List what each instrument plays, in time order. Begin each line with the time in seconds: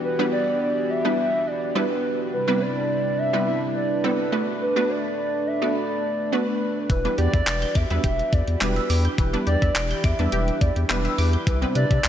Already playing: analog synth pad E3 B3 D4 F#4 G4
0.04 soft synth lead B4
0.19 synth pluck G3 B3 D4 E4 B4
0.33 soft synth lead D5
0.61 soft synth lead D5
0.90 soft synth lead E5
1.05 synth pluck G3 B3 D4 E4 B4
1.19 soft synth lead E5
1.47 soft synth lead D5
1.75 synth pluck G3 B3 D4 E4 B4, soft synth lead B4
2.33 analog synth pad C3 G3 E4 B4, soft synth lead B4
2.48 synth pluck G3 B3 C4 E4 B4
2.61 soft synth lead D5
3.18 soft synth lead E5
3.33 synth pluck G3 B3 C4 E4 B4
3.47 soft synth lead E5
3.76 soft synth lead D5
4.04 synth pluck G3 B3 C4 E4 A4, soft synth lead B4
4.32 synth pluck A3 B3 D4 F#4 B4, analog synth pad A3
4.62 soft synth lead B4
4.76 synth pluck A3 B3 D4 F#4 B4
4.90 soft synth lead D5
5.47 soft synth lead E5
5.62 synth pluck A3 B3 D4 F#4 D5
5.76 soft synth lead D5
6.32 synth pluck A3 B3 D4 F#4 B4, soft synth lead B4
6.90 sub bass E1, synth arpeggio sound E3, analog synth pad E3 F#4 G4, soft synth lead B4, kick, closed hi-hat
7.05 synth pluck G3 B3 D4 E4 B4, synth arpeggio sound D4, closed hi-hat
7.18 sub bass E2, synth arpeggio sound G4, soft synth lead D5, closed hi-hat
7.34 sub bass E2, synth arpeggio sound E5, kick, closed hi-hat
7.47 sub bass E1, synth arpeggio sound D6, clap, closed hi-hat
7.62 synth arpeggio sound G6, closed hi-hat
7.75 sub bass E2, soft synth lead E5, synth arpeggio sound D6, kick, closed hi-hat
7.90 sub bass E2, synth pluck G3 B3 D4 E4 B4, synth arpeggio sound E5, closed hi-hat
8.04 sub bass E1, synth arpeggio sound G4, soft synth lead E5, kick, closed hi-hat
8.19 closed hi-hat
8.33 sub bass E2, soft synth lead D5, kick, closed hi-hat
8.48 sub bass E2, closed hi-hat
8.61 sub bass E1, synth pluck G3 B3 D4 E4 B4, synth arpeggio sound G4, soft synth lead B4, clap, closed hi-hat
8.76 synth arpeggio sound E5, closed hi-hat
8.90 sub bass E2, synth arpeggio sound D6, open hi-hat
9.05 synth arpeggio sound G6, closed hi-hat
9.18 sub bass E1, synth arpeggio sound E3, analog synth pad E4, soft synth lead B4, kick, closed hi-hat
9.33 synth pluck G3 B3 D4 E4 B4, synth arpeggio sound D4, closed hi-hat
9.47 sub bass E2, synth arpeggio sound G4, soft synth lead D5, closed hi-hat
9.62 sub bass E2, synth arpeggio sound E5, kick, closed hi-hat
9.76 sub bass E1, synth arpeggio sound D6, clap, closed hi-hat
9.91 synth arpeggio sound G6, closed hi-hat
10.04 sub bass E2, soft synth lead E5, synth arpeggio sound D6, kick, closed hi-hat
10.19 sub bass E2, synth pluck G3 B3 D4 E4 B4, synth arpeggio sound E5, closed hi-hat
10.32 sub bass E1, synth arpeggio sound G4, soft synth lead E5, closed hi-hat
10.48 closed hi-hat
10.61 sub bass E2, soft synth lead D5, kick, closed hi-hat
10.76 sub bass E2, closed hi-hat
10.89 sub bass E1, synth pluck G3 B3 D4 E4 B4, synth arpeggio sound G4, soft synth lead B4, clap, closed hi-hat
11.05 synth arpeggio sound E5, closed hi-hat
11.18 sub bass E2, synth arpeggio sound D6, open hi-hat
11.33 synth arpeggio sound G6, closed hi-hat
11.47 sub bass C2, analog synth pad C3 G3 D4, synth arpeggio sound E3, soft synth lead B4, kick, closed hi-hat
11.62 synth pluck G3 B3 C4 E4 B4, synth arpeggio sound C4, closed hi-hat
11.75 sub bass C3, synth arpeggio sound B4, soft synth lead D5, closed hi-hat
11.91 sub bass C3, synth arpeggio sound E5, kick, closed hi-hat
12.04 sub bass C2, synth arpeggio sound C6, clap, closed hi-hat